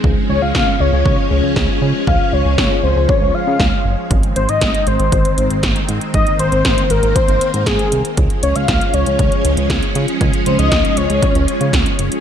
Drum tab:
HH |----------------|----------------|xxxxxxxxxxxxxxxx|xxxxxxxxxxxxxxxx|
SD |----o-------o---|----o-------o---|----o-------o---|----o-------o---|
BD |o---o---o---o---|o---o---o---o---|o---o---o---o---|o---o---o---o---|

HH |xxxxxxxxxxxxxxxx|xxxxxxxxxxxxxxxx|
SD |----o-------o---|----o-------o---|
BD |o---o---o---o---|o---o---o---o---|